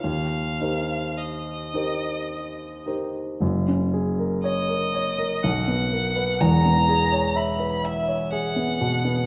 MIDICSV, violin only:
0, 0, Header, 1, 2, 480
1, 0, Start_track
1, 0, Tempo, 1123596
1, 17, Time_signature, 3, 2, 24, 8
1, 1457, Tempo, 1036269
1, 1937, Tempo, 986842
1, 2897, Tempo, 961538
1, 4315, End_track
2, 0, Start_track
2, 0, Title_t, "Violin"
2, 0, Program_c, 0, 40
2, 19, Note_on_c, 0, 77, 58
2, 503, Note_on_c, 0, 75, 46
2, 509, Note_off_c, 0, 77, 0
2, 1225, Note_off_c, 0, 75, 0
2, 1934, Note_on_c, 0, 75, 70
2, 2416, Note_on_c, 0, 78, 64
2, 2423, Note_off_c, 0, 75, 0
2, 2894, Note_on_c, 0, 82, 81
2, 2902, Note_off_c, 0, 78, 0
2, 3368, Note_on_c, 0, 83, 64
2, 3375, Note_off_c, 0, 82, 0
2, 3611, Note_on_c, 0, 76, 64
2, 3618, Note_off_c, 0, 83, 0
2, 3848, Note_off_c, 0, 76, 0
2, 3851, Note_on_c, 0, 78, 70
2, 4315, Note_off_c, 0, 78, 0
2, 4315, End_track
0, 0, End_of_file